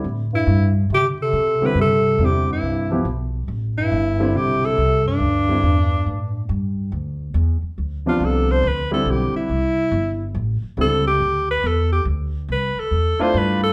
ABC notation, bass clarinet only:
X:1
M:4/4
L:1/8
Q:"Swing" 1/4=140
K:Ddor
V:1 name="Bass clarinet" clef=bass
z G,,2 z C, C,2 D, | C,2 C, G,,3 z2 | z G,,3 C, C,2 G,,- | G,,6 z2 |
z8 | z8 | z8 | z8 |]